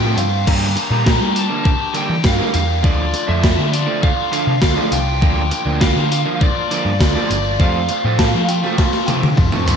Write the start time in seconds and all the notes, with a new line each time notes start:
Already playing: A2 F3 G5
0.01 C3 F3 A3 C4, muted overdriven electric guitar stroke
0.15 G2 F3 A3 C4 F4 F5, open hi-hat
0.30 A3 C4 F4
0.46 G2 D3 G3 A#3 D4 G4 A#5, kick, crash
0.76 muted overdriven electric guitar stroke, open hi-hat
0.90 A#2 D3 G3 A#3 D4
1.04 A#3 D4 G4, kick, snare
1.20 G3
1.34 A#3 D4 G4, open hi-hat
1.38 A5
1.49 D3 G3 A#3 D4, muted overdriven electric guitar stroke
1.63 A#3 D4 G4, kick
1.78 D4 G4
1.92 D3 G3 A#3 D4 G4, open hi-hat
1.97 G5
2.09 E3
2.22 G2 A#3 D4 G4, kick, snare
2.27 F5
2.38 D3 G3 A#3 D4, muted overdriven electric guitar stroke
2.53 E2 A#3 D4 G4 F5, open hi-hat
2.67 D4 G4
2.82 D2 D3 F3 A3 D4 F4 D5, kick
3.13 muted overdriven electric guitar stroke, open hi-hat
3.27 F2 D3 F3 A3 D4 E5
3.41 F3 A3 D4 F4, kick, snare
3.58 D3
3.72 F3 A3 D4 F4 D5, open hi-hat
3.86 D3 F3 A3 D4, muted overdriven electric guitar stroke
4.02 F3 A3 D4 F4 F5, kick
4.17 A3 D4 F4
4.32 D3 F3 A3 D4 F4 F5, open hi-hat
4.47 C3
4.62 D2 F3 A3 D4 F4 F5, kick, snare
4.76 D3 F3 A3 D4, muted overdriven electric guitar stroke
4.92 C2 F3 A3 D4 G5, open hi-hat
4.96 F4
5.08 A3 D4 F4
5.21 D2 D3 F3 A#3 D4, kick
5.25 F4
5.51 muted overdriven electric guitar stroke, open hi-hat
5.66 D2 D3 F3 A#3 D4
5.81 F3 A#3 D4 F4 F5, kick, snare
5.96 D3
6.09 F3 A#3 D4 F4, open hi-hat
6.25 D3 F3 A#3 D4, muted overdriven electric guitar stroke
6.40 F3 A#3 D4 F4 D5, kick
6.55 A#3 D4 F4
6.69 D3 F3 A#3 D4 F4, open hi-hat
6.85 G2
6.99 D2 F3 A#3 D4 F4 D5, kick, snare
7.15 D3 F3 A#3 D4, muted overdriven electric guitar stroke
7.29 G1 F3 A#3 D4 F4, open hi-hat
7.43 A#3 D4 F4
7.59 F2 C3 F3 A3 C4 F4 F5, kick
7.89 muted overdriven electric guitar stroke, open hi-hat
8.04 A2 C3 F3 A3 C4
8.18 A3 C4 F4 A5, kick, snare
8.34 F3
8.48 A3 C4 F4 G5, open hi-hat
8.63 C3 F3 A3 C4, muted overdriven electric guitar stroke, snare
8.78 A3 C4 F4 A5, kick, snare
8.92 C4 F4, snare
9.06 C3 F3 A3 C4 G5, open hi-hat, high tom
9.10 F4
9.23 D3, high tom
9.36 F2 A3 C4 F4 F5, kick, mid tom
9.52 C3 F3 A3 C4, muted overdriven electric guitar stroke, mid tom
9.66 G2 A3 C4 F4, floor tom, open hi-hat